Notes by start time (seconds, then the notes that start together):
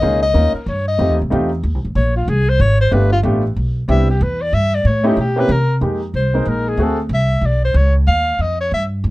Already playing: D#5
0.01 C#2 A#3 C#4 D#4 F4 G#4
0.23 D#5
0.34 D#2 A#3 C#4 D#4 F4 A#4
0.54 A#4, muted upright bass stroke
0.66 G2 C#5
0.88 D#5
0.98 F2 A3 C4 D#4 F4 G4
1.10 D#2
1.22 C2
1.30 E2 A3 C4 D#4 F4 G4
1.63 D#2
1.74 C2
1.85 A1
1.95 A#1 C#5
2.16 F4
2.28 C2 G#4
2.49 C5
2.60 G#1 C#5
2.81 C5
2.91 G1 A3 B3 D4 F4 G4 B4
3.12 F4
3.23 A1 A3 B3 D4 F4 G4
3.56 B1
3.88 C2 B3 C4 D4 E4 G4 E5
4.10 G4
4.21 E2 B4
4.42 D5
4.53 G2 E5
4.75 D5
4.85 A2 C#5
5.04 A3 C#4 D#4 E4 G4
5.08 E4
5.17 B2 G4
5.36 A#3 C4 C#4 E4 G4 B4
5.49 C3 A#4
5.81 F2 G#3 A#3 D#4 G4
6.14 C2 C5
6.34 G#3 A#3 D#4 A#4
6.45 A#1 A#4
6.69 G#4
6.77 D2 A3 C4 F#4 G#4
6.83 A4
7.09 C2
7.14 E5
7.41 B1
7.46 D5
7.65 C5
7.74 C#2 C#5
8.07 D#2 F5
8.39 F2 D#5
8.60 C#5
8.72 G2 E5
9.04 E2